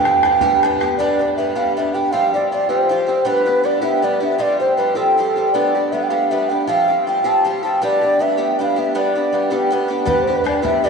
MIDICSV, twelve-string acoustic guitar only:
0, 0, Header, 1, 2, 480
1, 0, Start_track
1, 0, Tempo, 378788
1, 1248, Time_signature, 6, 3, 24, 8
1, 13806, End_track
2, 0, Start_track
2, 0, Title_t, "Twelve-string acoustic guitar"
2, 0, Program_c, 0, 25
2, 68, Note_on_c, 0, 67, 55
2, 86, Note_on_c, 0, 62, 44
2, 93, Note_on_c, 0, 59, 44
2, 290, Note_on_c, 0, 55, 46
2, 295, Note_off_c, 0, 59, 0
2, 297, Note_off_c, 0, 67, 0
2, 306, Note_off_c, 0, 62, 0
2, 310, Note_on_c, 0, 59, 58
2, 320, Note_on_c, 0, 62, 47
2, 324, Note_on_c, 0, 67, 55
2, 507, Note_off_c, 0, 67, 0
2, 519, Note_off_c, 0, 62, 0
2, 521, Note_off_c, 0, 59, 0
2, 522, Note_off_c, 0, 55, 0
2, 522, Note_on_c, 0, 67, 84
2, 534, Note_on_c, 0, 62, 75
2, 536, Note_on_c, 0, 59, 60
2, 547, Note_on_c, 0, 55, 56
2, 780, Note_off_c, 0, 55, 0
2, 792, Note_off_c, 0, 67, 0
2, 795, Note_on_c, 0, 55, 68
2, 798, Note_off_c, 0, 62, 0
2, 799, Note_off_c, 0, 59, 0
2, 813, Note_on_c, 0, 59, 67
2, 817, Note_on_c, 0, 62, 75
2, 832, Note_on_c, 0, 67, 68
2, 1004, Note_off_c, 0, 67, 0
2, 1019, Note_off_c, 0, 62, 0
2, 1019, Note_on_c, 0, 67, 58
2, 1022, Note_off_c, 0, 55, 0
2, 1031, Note_off_c, 0, 59, 0
2, 1034, Note_on_c, 0, 62, 49
2, 1050, Note_on_c, 0, 59, 52
2, 1244, Note_off_c, 0, 59, 0
2, 1247, Note_off_c, 0, 67, 0
2, 1251, Note_on_c, 0, 55, 63
2, 1255, Note_off_c, 0, 62, 0
2, 1260, Note_on_c, 0, 59, 72
2, 1268, Note_on_c, 0, 62, 81
2, 1269, Note_on_c, 0, 67, 83
2, 1494, Note_off_c, 0, 67, 0
2, 1510, Note_on_c, 0, 67, 44
2, 1514, Note_off_c, 0, 62, 0
2, 1518, Note_off_c, 0, 55, 0
2, 1522, Note_off_c, 0, 59, 0
2, 1529, Note_on_c, 0, 62, 40
2, 1537, Note_on_c, 0, 59, 44
2, 1739, Note_off_c, 0, 59, 0
2, 1740, Note_off_c, 0, 67, 0
2, 1743, Note_off_c, 0, 62, 0
2, 1745, Note_on_c, 0, 55, 46
2, 1754, Note_on_c, 0, 59, 56
2, 1758, Note_on_c, 0, 62, 55
2, 1770, Note_on_c, 0, 67, 58
2, 1955, Note_off_c, 0, 67, 0
2, 1963, Note_off_c, 0, 62, 0
2, 1965, Note_off_c, 0, 59, 0
2, 1970, Note_on_c, 0, 67, 60
2, 1971, Note_off_c, 0, 55, 0
2, 1978, Note_on_c, 0, 62, 52
2, 1980, Note_on_c, 0, 59, 59
2, 1988, Note_on_c, 0, 55, 46
2, 2224, Note_off_c, 0, 55, 0
2, 2232, Note_off_c, 0, 59, 0
2, 2238, Note_off_c, 0, 67, 0
2, 2239, Note_on_c, 0, 55, 54
2, 2242, Note_off_c, 0, 62, 0
2, 2247, Note_on_c, 0, 59, 60
2, 2261, Note_on_c, 0, 62, 60
2, 2272, Note_on_c, 0, 67, 59
2, 2448, Note_off_c, 0, 67, 0
2, 2460, Note_off_c, 0, 62, 0
2, 2463, Note_on_c, 0, 67, 50
2, 2466, Note_off_c, 0, 55, 0
2, 2470, Note_off_c, 0, 59, 0
2, 2476, Note_on_c, 0, 62, 49
2, 2490, Note_on_c, 0, 59, 37
2, 2688, Note_off_c, 0, 59, 0
2, 2690, Note_on_c, 0, 53, 62
2, 2692, Note_off_c, 0, 67, 0
2, 2693, Note_on_c, 0, 55, 71
2, 2698, Note_off_c, 0, 62, 0
2, 2705, Note_on_c, 0, 60, 71
2, 2706, Note_on_c, 0, 67, 74
2, 2950, Note_off_c, 0, 67, 0
2, 2959, Note_off_c, 0, 53, 0
2, 2961, Note_off_c, 0, 55, 0
2, 2961, Note_off_c, 0, 60, 0
2, 2965, Note_on_c, 0, 67, 44
2, 2977, Note_on_c, 0, 60, 40
2, 2990, Note_on_c, 0, 55, 43
2, 3183, Note_off_c, 0, 55, 0
2, 3190, Note_off_c, 0, 67, 0
2, 3194, Note_on_c, 0, 53, 47
2, 3195, Note_off_c, 0, 60, 0
2, 3199, Note_on_c, 0, 55, 51
2, 3210, Note_on_c, 0, 60, 50
2, 3222, Note_on_c, 0, 67, 53
2, 3393, Note_off_c, 0, 67, 0
2, 3400, Note_off_c, 0, 60, 0
2, 3405, Note_off_c, 0, 55, 0
2, 3408, Note_on_c, 0, 67, 51
2, 3409, Note_off_c, 0, 53, 0
2, 3416, Note_on_c, 0, 60, 54
2, 3420, Note_on_c, 0, 55, 47
2, 3425, Note_on_c, 0, 53, 52
2, 3651, Note_off_c, 0, 53, 0
2, 3666, Note_off_c, 0, 55, 0
2, 3666, Note_on_c, 0, 53, 68
2, 3672, Note_off_c, 0, 60, 0
2, 3679, Note_off_c, 0, 67, 0
2, 3681, Note_on_c, 0, 55, 53
2, 3687, Note_on_c, 0, 60, 66
2, 3696, Note_on_c, 0, 67, 69
2, 3870, Note_off_c, 0, 67, 0
2, 3885, Note_on_c, 0, 67, 52
2, 3891, Note_off_c, 0, 60, 0
2, 3899, Note_off_c, 0, 55, 0
2, 3901, Note_off_c, 0, 53, 0
2, 3906, Note_on_c, 0, 60, 47
2, 3914, Note_on_c, 0, 55, 45
2, 4100, Note_off_c, 0, 55, 0
2, 4115, Note_on_c, 0, 55, 71
2, 4117, Note_on_c, 0, 59, 71
2, 4121, Note_off_c, 0, 67, 0
2, 4122, Note_off_c, 0, 60, 0
2, 4127, Note_on_c, 0, 62, 75
2, 4136, Note_on_c, 0, 67, 79
2, 4363, Note_off_c, 0, 67, 0
2, 4378, Note_off_c, 0, 62, 0
2, 4378, Note_on_c, 0, 67, 47
2, 4391, Note_off_c, 0, 59, 0
2, 4393, Note_on_c, 0, 62, 52
2, 4394, Note_off_c, 0, 55, 0
2, 4406, Note_on_c, 0, 59, 39
2, 4600, Note_off_c, 0, 59, 0
2, 4606, Note_on_c, 0, 55, 56
2, 4609, Note_off_c, 0, 62, 0
2, 4614, Note_off_c, 0, 67, 0
2, 4616, Note_on_c, 0, 59, 42
2, 4624, Note_on_c, 0, 62, 58
2, 4629, Note_on_c, 0, 67, 49
2, 4820, Note_off_c, 0, 67, 0
2, 4826, Note_off_c, 0, 62, 0
2, 4832, Note_off_c, 0, 59, 0
2, 4835, Note_on_c, 0, 67, 67
2, 4840, Note_off_c, 0, 55, 0
2, 4841, Note_on_c, 0, 62, 63
2, 4847, Note_on_c, 0, 59, 55
2, 4855, Note_on_c, 0, 55, 46
2, 5083, Note_off_c, 0, 55, 0
2, 5093, Note_off_c, 0, 59, 0
2, 5098, Note_on_c, 0, 55, 58
2, 5104, Note_off_c, 0, 62, 0
2, 5108, Note_on_c, 0, 59, 57
2, 5110, Note_off_c, 0, 67, 0
2, 5119, Note_on_c, 0, 62, 60
2, 5125, Note_on_c, 0, 67, 64
2, 5311, Note_off_c, 0, 67, 0
2, 5326, Note_on_c, 0, 67, 49
2, 5331, Note_off_c, 0, 62, 0
2, 5338, Note_off_c, 0, 55, 0
2, 5344, Note_off_c, 0, 59, 0
2, 5346, Note_on_c, 0, 62, 45
2, 5360, Note_on_c, 0, 59, 38
2, 5556, Note_on_c, 0, 53, 62
2, 5562, Note_off_c, 0, 59, 0
2, 5562, Note_off_c, 0, 67, 0
2, 5564, Note_off_c, 0, 62, 0
2, 5567, Note_on_c, 0, 55, 82
2, 5569, Note_on_c, 0, 60, 67
2, 5578, Note_on_c, 0, 67, 73
2, 5810, Note_off_c, 0, 67, 0
2, 5822, Note_off_c, 0, 60, 0
2, 5825, Note_on_c, 0, 67, 51
2, 5834, Note_off_c, 0, 55, 0
2, 5835, Note_off_c, 0, 53, 0
2, 5837, Note_on_c, 0, 60, 39
2, 5849, Note_on_c, 0, 55, 36
2, 6045, Note_off_c, 0, 55, 0
2, 6048, Note_on_c, 0, 53, 42
2, 6049, Note_off_c, 0, 60, 0
2, 6060, Note_on_c, 0, 55, 54
2, 6062, Note_off_c, 0, 67, 0
2, 6064, Note_on_c, 0, 60, 50
2, 6075, Note_on_c, 0, 67, 54
2, 6259, Note_off_c, 0, 67, 0
2, 6273, Note_off_c, 0, 60, 0
2, 6274, Note_on_c, 0, 67, 60
2, 6283, Note_off_c, 0, 55, 0
2, 6287, Note_off_c, 0, 53, 0
2, 6288, Note_on_c, 0, 60, 63
2, 6299, Note_on_c, 0, 55, 49
2, 6301, Note_on_c, 0, 53, 50
2, 6541, Note_off_c, 0, 53, 0
2, 6554, Note_off_c, 0, 55, 0
2, 6554, Note_off_c, 0, 67, 0
2, 6556, Note_on_c, 0, 53, 57
2, 6561, Note_off_c, 0, 60, 0
2, 6569, Note_on_c, 0, 55, 68
2, 6574, Note_on_c, 0, 60, 55
2, 6589, Note_on_c, 0, 67, 61
2, 6774, Note_off_c, 0, 67, 0
2, 6788, Note_off_c, 0, 53, 0
2, 6789, Note_off_c, 0, 60, 0
2, 6790, Note_on_c, 0, 67, 43
2, 6794, Note_off_c, 0, 55, 0
2, 6804, Note_on_c, 0, 60, 48
2, 6818, Note_on_c, 0, 55, 46
2, 7005, Note_off_c, 0, 55, 0
2, 7018, Note_off_c, 0, 67, 0
2, 7020, Note_on_c, 0, 55, 57
2, 7025, Note_off_c, 0, 60, 0
2, 7027, Note_on_c, 0, 59, 72
2, 7030, Note_on_c, 0, 62, 71
2, 7041, Note_on_c, 0, 67, 83
2, 7269, Note_off_c, 0, 67, 0
2, 7281, Note_off_c, 0, 62, 0
2, 7284, Note_on_c, 0, 67, 46
2, 7287, Note_off_c, 0, 55, 0
2, 7291, Note_off_c, 0, 59, 0
2, 7296, Note_on_c, 0, 62, 42
2, 7311, Note_on_c, 0, 59, 37
2, 7500, Note_off_c, 0, 59, 0
2, 7504, Note_on_c, 0, 55, 45
2, 7509, Note_off_c, 0, 62, 0
2, 7512, Note_off_c, 0, 67, 0
2, 7515, Note_on_c, 0, 59, 49
2, 7524, Note_on_c, 0, 62, 58
2, 7534, Note_on_c, 0, 67, 49
2, 7717, Note_off_c, 0, 67, 0
2, 7722, Note_off_c, 0, 62, 0
2, 7731, Note_off_c, 0, 59, 0
2, 7732, Note_on_c, 0, 67, 63
2, 7735, Note_off_c, 0, 55, 0
2, 7737, Note_on_c, 0, 62, 60
2, 7746, Note_on_c, 0, 59, 50
2, 7750, Note_on_c, 0, 55, 43
2, 7981, Note_off_c, 0, 55, 0
2, 7989, Note_off_c, 0, 59, 0
2, 7996, Note_off_c, 0, 62, 0
2, 7996, Note_on_c, 0, 55, 62
2, 8004, Note_off_c, 0, 67, 0
2, 8004, Note_on_c, 0, 59, 61
2, 8011, Note_on_c, 0, 62, 61
2, 8019, Note_on_c, 0, 67, 61
2, 8215, Note_off_c, 0, 67, 0
2, 8228, Note_off_c, 0, 55, 0
2, 8230, Note_on_c, 0, 67, 46
2, 8232, Note_off_c, 0, 59, 0
2, 8236, Note_off_c, 0, 62, 0
2, 8250, Note_on_c, 0, 62, 46
2, 8257, Note_on_c, 0, 59, 46
2, 8457, Note_on_c, 0, 53, 71
2, 8459, Note_off_c, 0, 67, 0
2, 8466, Note_off_c, 0, 59, 0
2, 8468, Note_off_c, 0, 62, 0
2, 8471, Note_on_c, 0, 55, 67
2, 8476, Note_on_c, 0, 60, 64
2, 8480, Note_on_c, 0, 67, 87
2, 8701, Note_off_c, 0, 67, 0
2, 8716, Note_on_c, 0, 67, 44
2, 8718, Note_off_c, 0, 60, 0
2, 8726, Note_off_c, 0, 53, 0
2, 8730, Note_off_c, 0, 55, 0
2, 8733, Note_on_c, 0, 60, 40
2, 8745, Note_on_c, 0, 55, 41
2, 8948, Note_off_c, 0, 67, 0
2, 8950, Note_off_c, 0, 55, 0
2, 8956, Note_on_c, 0, 53, 44
2, 8957, Note_off_c, 0, 60, 0
2, 8965, Note_on_c, 0, 55, 49
2, 8976, Note_on_c, 0, 60, 51
2, 8983, Note_on_c, 0, 67, 57
2, 9161, Note_off_c, 0, 67, 0
2, 9170, Note_off_c, 0, 60, 0
2, 9173, Note_off_c, 0, 55, 0
2, 9176, Note_on_c, 0, 67, 60
2, 9181, Note_off_c, 0, 53, 0
2, 9185, Note_on_c, 0, 60, 68
2, 9188, Note_on_c, 0, 55, 59
2, 9200, Note_on_c, 0, 53, 59
2, 9419, Note_off_c, 0, 53, 0
2, 9426, Note_off_c, 0, 55, 0
2, 9434, Note_on_c, 0, 53, 60
2, 9436, Note_off_c, 0, 60, 0
2, 9441, Note_on_c, 0, 55, 63
2, 9445, Note_off_c, 0, 67, 0
2, 9452, Note_on_c, 0, 60, 66
2, 9460, Note_on_c, 0, 67, 63
2, 9650, Note_off_c, 0, 67, 0
2, 9666, Note_on_c, 0, 67, 56
2, 9667, Note_off_c, 0, 53, 0
2, 9670, Note_off_c, 0, 55, 0
2, 9670, Note_off_c, 0, 60, 0
2, 9685, Note_on_c, 0, 60, 48
2, 9693, Note_on_c, 0, 55, 45
2, 9889, Note_off_c, 0, 55, 0
2, 9896, Note_off_c, 0, 67, 0
2, 9905, Note_off_c, 0, 60, 0
2, 9905, Note_on_c, 0, 55, 79
2, 9914, Note_on_c, 0, 59, 70
2, 9918, Note_on_c, 0, 62, 79
2, 9925, Note_on_c, 0, 67, 81
2, 10139, Note_off_c, 0, 67, 0
2, 10154, Note_on_c, 0, 67, 47
2, 10160, Note_off_c, 0, 62, 0
2, 10169, Note_off_c, 0, 55, 0
2, 10173, Note_off_c, 0, 59, 0
2, 10176, Note_on_c, 0, 62, 41
2, 10186, Note_on_c, 0, 59, 37
2, 10378, Note_off_c, 0, 59, 0
2, 10379, Note_on_c, 0, 55, 50
2, 10386, Note_off_c, 0, 67, 0
2, 10387, Note_off_c, 0, 62, 0
2, 10393, Note_on_c, 0, 59, 52
2, 10403, Note_on_c, 0, 62, 50
2, 10410, Note_on_c, 0, 67, 61
2, 10594, Note_off_c, 0, 67, 0
2, 10602, Note_off_c, 0, 62, 0
2, 10606, Note_off_c, 0, 59, 0
2, 10609, Note_on_c, 0, 67, 55
2, 10612, Note_off_c, 0, 55, 0
2, 10617, Note_on_c, 0, 62, 63
2, 10622, Note_on_c, 0, 59, 53
2, 10631, Note_on_c, 0, 55, 46
2, 10869, Note_off_c, 0, 55, 0
2, 10879, Note_off_c, 0, 59, 0
2, 10880, Note_off_c, 0, 67, 0
2, 10884, Note_off_c, 0, 62, 0
2, 10884, Note_on_c, 0, 55, 53
2, 10894, Note_on_c, 0, 59, 59
2, 10902, Note_on_c, 0, 62, 57
2, 10912, Note_on_c, 0, 67, 69
2, 11087, Note_off_c, 0, 67, 0
2, 11102, Note_off_c, 0, 62, 0
2, 11102, Note_on_c, 0, 67, 54
2, 11110, Note_off_c, 0, 55, 0
2, 11115, Note_off_c, 0, 59, 0
2, 11117, Note_on_c, 0, 62, 45
2, 11129, Note_on_c, 0, 59, 45
2, 11326, Note_off_c, 0, 59, 0
2, 11331, Note_off_c, 0, 62, 0
2, 11332, Note_off_c, 0, 67, 0
2, 11337, Note_on_c, 0, 55, 65
2, 11341, Note_on_c, 0, 59, 85
2, 11346, Note_on_c, 0, 62, 69
2, 11350, Note_on_c, 0, 67, 75
2, 11585, Note_off_c, 0, 67, 0
2, 11595, Note_off_c, 0, 62, 0
2, 11600, Note_on_c, 0, 67, 48
2, 11603, Note_off_c, 0, 55, 0
2, 11605, Note_off_c, 0, 59, 0
2, 11610, Note_on_c, 0, 62, 45
2, 11627, Note_on_c, 0, 59, 41
2, 11812, Note_off_c, 0, 59, 0
2, 11817, Note_on_c, 0, 55, 49
2, 11822, Note_off_c, 0, 62, 0
2, 11827, Note_off_c, 0, 67, 0
2, 11827, Note_on_c, 0, 59, 52
2, 11837, Note_on_c, 0, 62, 51
2, 11847, Note_on_c, 0, 67, 57
2, 12027, Note_off_c, 0, 67, 0
2, 12036, Note_off_c, 0, 62, 0
2, 12042, Note_on_c, 0, 67, 63
2, 12046, Note_off_c, 0, 59, 0
2, 12048, Note_off_c, 0, 55, 0
2, 12051, Note_on_c, 0, 62, 60
2, 12061, Note_on_c, 0, 55, 45
2, 12061, Note_on_c, 0, 59, 64
2, 12282, Note_off_c, 0, 55, 0
2, 12298, Note_off_c, 0, 59, 0
2, 12298, Note_on_c, 0, 55, 60
2, 12305, Note_off_c, 0, 62, 0
2, 12313, Note_on_c, 0, 59, 68
2, 12315, Note_off_c, 0, 67, 0
2, 12320, Note_on_c, 0, 62, 77
2, 12331, Note_on_c, 0, 67, 78
2, 12508, Note_off_c, 0, 67, 0
2, 12523, Note_on_c, 0, 67, 59
2, 12525, Note_off_c, 0, 62, 0
2, 12533, Note_off_c, 0, 59, 0
2, 12535, Note_off_c, 0, 55, 0
2, 12540, Note_on_c, 0, 62, 49
2, 12548, Note_on_c, 0, 59, 50
2, 12734, Note_off_c, 0, 59, 0
2, 12740, Note_off_c, 0, 62, 0
2, 12741, Note_on_c, 0, 55, 77
2, 12747, Note_off_c, 0, 67, 0
2, 12750, Note_on_c, 0, 59, 78
2, 12755, Note_on_c, 0, 62, 67
2, 12762, Note_on_c, 0, 67, 91
2, 13003, Note_off_c, 0, 67, 0
2, 13019, Note_on_c, 0, 67, 51
2, 13020, Note_off_c, 0, 62, 0
2, 13023, Note_off_c, 0, 55, 0
2, 13027, Note_off_c, 0, 59, 0
2, 13035, Note_on_c, 0, 62, 47
2, 13049, Note_on_c, 0, 59, 43
2, 13226, Note_off_c, 0, 59, 0
2, 13230, Note_off_c, 0, 62, 0
2, 13231, Note_on_c, 0, 55, 53
2, 13242, Note_on_c, 0, 59, 56
2, 13244, Note_off_c, 0, 67, 0
2, 13245, Note_on_c, 0, 62, 54
2, 13259, Note_on_c, 0, 67, 57
2, 13447, Note_off_c, 0, 67, 0
2, 13456, Note_off_c, 0, 62, 0
2, 13459, Note_off_c, 0, 59, 0
2, 13462, Note_on_c, 0, 67, 53
2, 13468, Note_off_c, 0, 55, 0
2, 13471, Note_on_c, 0, 62, 58
2, 13475, Note_on_c, 0, 59, 59
2, 13483, Note_on_c, 0, 55, 54
2, 13717, Note_off_c, 0, 55, 0
2, 13728, Note_off_c, 0, 59, 0
2, 13732, Note_on_c, 0, 55, 68
2, 13735, Note_off_c, 0, 62, 0
2, 13741, Note_off_c, 0, 67, 0
2, 13743, Note_on_c, 0, 59, 62
2, 13751, Note_on_c, 0, 62, 65
2, 13762, Note_on_c, 0, 67, 65
2, 13806, Note_off_c, 0, 55, 0
2, 13806, Note_off_c, 0, 59, 0
2, 13806, Note_off_c, 0, 62, 0
2, 13806, Note_off_c, 0, 67, 0
2, 13806, End_track
0, 0, End_of_file